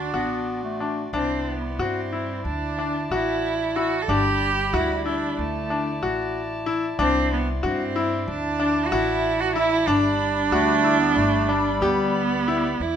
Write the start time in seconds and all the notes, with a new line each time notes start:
Already playing: D2 D4 F#4 D5 C6
0.14 A1 B3 F#4
0.64 A3
0.80 D4
1.13 C2 C4 D4 E4 D5 C6
1.49 B3
1.79 G2 C4 F#4
2.12 E4
2.45 D2 D4 E4 A5
2.79 D4
3.10 A1 E4 F#4
3.76 E4 F#4
4.02 A4
4.08 G1 G3 D4 G4 B5
4.73 D2 E4 F#4
5.06 D4 E4
5.38 D2 A3 E4 A5
5.70 D4
6.02 A1 F#4
6.66 E4
6.98 C2 C4 D4 C6
7.33 B3
7.63 G2 C4 F#4
7.96 E4
8.28 D2 D4 A5
8.59 D4
8.86 F#4
8.91 A1 E4 F#4
9.40 F#4
9.56 E4
9.87 G1 G3 D4 B5
10.52 D2 A3 F#4
10.84 E4
11.00 B3
11.16 G1 A3
11.49 G3 D4
11.81 D2 B3 G4
12.48 E4
12.80 E2 E4 D5 E5